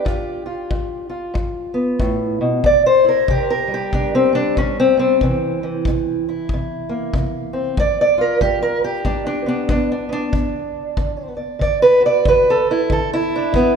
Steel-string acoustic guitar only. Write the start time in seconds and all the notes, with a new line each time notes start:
Already playing: G4
0.05 G2 F4
0.46 F4
0.70 G2
1.10 F4
1.34 G2
1.74 B3
2.00 A2
2.41 B2
2.64 C3 D5
2.86 C5
3.05 E4 A#4
3.30 C3 G4
3.50 A#4
3.68 G3
3.74 G4
3.94 C3 D4
4.15 C4
4.33 G3 D4
4.58 C3 C#4
4.80 C4
4.97 G3 C4
5.22 C3 E3
5.63 E3
5.88 C3
6.29 E4
6.54 C3
6.89 A#3
7.14 C3
7.53 C4
7.78 G3 D5
8.01 D5
8.18 F4 A#4
8.41 G3 G4
8.63 A#4
8.84 G4
9.05 G3 D4
9.27 D4
9.46 B3 D4
9.70 G3 D4
9.92 D4
10.09 B3 D4
10.32 D3
10.98 D3
11.37 D5
11.59 D3 D5
11.82 B4
12.00 F#4
12.06 D5
12.25 D3 B4
12.50 A4
12.71 E4
12.91 D3 A4
13.13 E4
13.36 D4
13.52 D3 B3